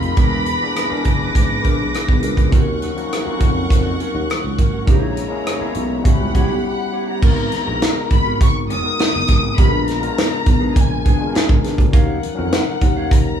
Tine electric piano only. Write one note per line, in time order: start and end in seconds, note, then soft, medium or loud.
0.00 0.20 F3 medium
0.00 0.20 A#3 medium
0.00 0.20 C4 medium
0.00 0.20 D#4 medium
0.00 0.20 G#4 medium
0.16 0.56 E3 medium
0.16 0.56 G#3 medium
0.16 0.57 B3 medium
0.16 0.57 D4 medium
0.16 0.57 G#4 medium
0.60 0.87 E3 medium
0.60 0.87 A#3 medium
0.60 0.88 B3 medium
0.60 0.88 D4 medium
0.60 0.88 G#4 medium
0.90 1.94 E3 medium
0.90 1.94 G#3 medium
0.90 1.94 B3 medium
0.90 1.94 D4 medium
0.90 1.95 G#4 medium
2.50 2.90 F#3 medium
2.50 2.90 A#3 medium
2.50 2.91 C#4 medium
2.50 2.91 D#4 medium
2.50 2.91 F#4 medium
2.94 3.21 F3 medium
2.94 3.22 A#3 medium
2.94 3.22 C#4 medium
2.94 3.23 D#4 medium
2.94 3.23 F#4 medium
3.23 4.27 F#3 medium
3.23 4.28 A#3 medium
3.23 4.28 C#4 medium
3.23 4.28 D#4 medium
3.23 4.29 F#4 medium
4.85 5.25 G#3 medium
4.85 5.25 A#3 medium
4.85 5.26 C#4 medium
4.85 5.26 E4 medium
4.85 5.27 G#4 medium
5.29 5.56 G#3 medium
5.29 5.56 A#3 medium
5.29 5.57 C#4 medium
5.29 5.57 E4 medium
5.29 5.58 G#4 medium
5.58 6.04 G#3 medium
5.58 6.04 A#3 medium
5.58 5.67 B3 medium
5.58 6.03 E4 medium
5.58 6.06 G#4 medium
5.66 6.02 C#4 medium
6.01 7.06 G3 medium
6.01 7.07 B3 medium
6.01 7.07 C#4 medium
6.01 7.08 E4 medium
6.01 7.08 F#4 medium
7.20 7.60 G#3 medium
7.20 7.60 B3 medium
7.20 7.61 D#4 medium
7.20 7.61 F#4 medium
7.20 7.61 A#4 medium
7.64 8.68 G#3 medium
7.64 8.69 B3 medium
7.64 8.69 D#4 medium
7.64 8.70 F#4 medium
7.64 7.73 G#4 medium
7.75 8.74 A#4 medium
8.83 9.48 G#3 medium
8.83 9.48 B3 medium
8.83 9.49 D#4 medium
8.83 9.49 F#4 medium
8.83 9.49 A#4 medium
9.56 9.96 G#3 medium
9.56 9.96 B3 medium
9.56 9.97 D4 medium
9.56 9.97 F4 medium
9.56 9.97 A#4 medium
10.00 11.04 G#3 medium
10.00 11.04 B3 medium
10.00 11.05 D4 medium
10.00 11.05 F4 medium
10.00 11.05 A#4 medium
11.18 11.83 G#3 medium
11.18 11.83 B3 medium
11.18 11.84 D4 medium
11.18 11.84 F4 medium
11.18 11.26 G#4 medium
11.27 11.88 A#4 medium
11.91 12.32 F3 medium
11.91 12.31 F#3 medium
11.91 12.31 C#4 medium
11.91 12.32 D#4 medium
11.91 12.32 A#4 medium
12.35 13.40 F3 medium
12.35 13.39 F#3 medium
12.35 13.40 C#4 medium
12.35 13.40 D#4 medium
12.35 13.40 A#4 medium